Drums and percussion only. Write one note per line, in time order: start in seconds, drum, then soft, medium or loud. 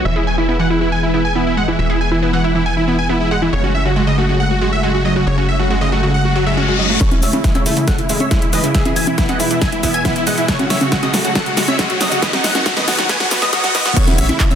7.01 kick loud
7.01 snare soft
7.01 closed hi-hat medium
7.01 shaker soft
7.12 closed hi-hat medium
7.12 high conga medium
7.22 open hi-hat loud
7.22 shaker medium
7.33 closed hi-hat medium
7.33 high conga medium
7.33 shaker soft
7.44 kick loud
7.44 snare soft
7.44 closed hi-hat medium
7.44 shaker soft
7.55 closed hi-hat medium
7.55 high conga medium
7.66 open hi-hat medium
7.66 shaker medium
7.77 closed hi-hat medium
7.77 shaker soft
7.88 kick loud
7.88 snare medium
7.88 closed hi-hat medium
7.88 shaker soft
7.98 closed hi-hat medium
8.09 open hi-hat loud
8.09 shaker medium
8.20 closed hi-hat medium
8.20 high conga medium
8.20 shaker soft
8.31 kick loud
8.31 snare medium
8.31 closed hi-hat medium
8.31 shaker soft
8.42 closed hi-hat medium
8.53 open hi-hat medium
8.53 shaker medium
8.64 closed hi-hat medium
8.64 shaker soft
8.75 kick loud
8.75 snare medium
8.75 closed hi-hat medium
8.75 shaker soft
8.85 closed hi-hat medium
8.85 high conga medium
8.96 open hi-hat loud
8.96 shaker medium
9.07 closed hi-hat medium
9.07 high conga medium
9.07 shaker soft
9.18 kick loud
9.18 snare medium
9.18 closed hi-hat medium
9.18 shaker soft
9.29 closed hi-hat medium
9.29 high conga medium
9.40 open hi-hat medium
9.40 shaker medium
9.51 closed hi-hat medium
9.51 shaker soft
9.62 kick loud
9.62 snare medium
9.62 closed hi-hat medium
9.62 shaker soft
9.72 closed hi-hat medium
9.83 kick medium
9.83 open hi-hat loud
9.83 shaker medium
9.94 closed hi-hat medium
9.94 shaker soft
10.05 kick loud
10.05 snare medium
10.05 closed hi-hat medium
10.05 shaker soft
10.16 closed hi-hat medium
10.27 open hi-hat loud
10.27 shaker medium
10.38 closed hi-hat medium
10.38 shaker soft
10.48 kick loud
10.48 snare medium
10.48 closed hi-hat medium
10.48 shaker soft
10.59 closed hi-hat soft
10.59 high conga medium
10.70 snare medium
10.70 open hi-hat loud
10.70 shaker medium
10.81 closed hi-hat medium
10.81 high conga medium
10.81 shaker soft
10.92 kick loud
10.92 snare medium
10.92 closed hi-hat medium
10.92 shaker soft
11.03 closed hi-hat medium
11.03 high conga medium
11.14 snare medium
11.14 open hi-hat loud
11.14 shaker medium
11.25 closed hi-hat medium
11.25 shaker soft
11.35 kick loud
11.35 snare medium
11.35 closed hi-hat medium
11.35 shaker soft
11.46 closed hi-hat soft
11.57 snare medium
11.57 open hi-hat loud
11.57 shaker medium
11.68 closed hi-hat medium
11.68 high conga medium
11.68 shaker soft
11.79 kick loud
11.79 snare medium
11.79 closed hi-hat medium
11.79 shaker soft
11.90 closed hi-hat soft
12.01 snare medium
12.01 open hi-hat loud
12.01 shaker medium
12.12 closed hi-hat medium
12.12 shaker soft
12.22 kick loud
12.22 snare medium
12.22 closed hi-hat medium
12.22 shaker soft
12.33 snare medium
12.33 closed hi-hat medium
12.33 high conga medium
12.33 shaker soft
12.44 snare medium
12.44 open hi-hat loud
12.44 shaker medium
12.55 snare medium
12.55 closed hi-hat medium
12.55 high conga medium
12.55 shaker soft
12.66 kick loud
12.66 snare medium
12.66 closed hi-hat medium
12.66 shaker soft
12.77 snare medium
12.77 closed hi-hat soft
12.77 high conga medium
12.77 shaker soft
12.88 snare loud
12.88 open hi-hat loud
12.88 shaker medium
12.99 snare medium
12.99 closed hi-hat medium
12.99 shaker soft
13.09 kick loud
13.09 snare loud
13.09 closed hi-hat medium
13.09 shaker soft
13.20 snare medium
13.20 closed hi-hat soft
13.31 kick medium
13.31 snare loud
13.31 open hi-hat loud
13.31 shaker medium
13.42 snare loud
13.42 closed hi-hat medium
13.42 shaker soft
13.53 kick loud
13.53 snare loud
13.53 closed hi-hat medium
13.53 shaker soft
13.64 snare loud
13.64 closed hi-hat medium
13.64 shaker soft
13.75 snare loud
13.75 open hi-hat loud
13.75 shaker medium
13.86 snare loud
13.86 closed hi-hat medium
13.86 shaker soft
13.96 kick loud
13.96 closed hi-hat medium
13.96 crash loud
13.96 shaker soft
14.07 closed hi-hat medium
14.07 high conga medium
14.07 shaker soft
14.18 open hi-hat loud
14.18 shaker medium
14.29 closed hi-hat medium
14.29 high conga medium
14.29 shaker soft
14.40 kick loud
14.40 clap loud
14.40 closed hi-hat medium
14.40 shaker soft
14.51 closed hi-hat medium
14.51 high conga medium
14.51 shaker soft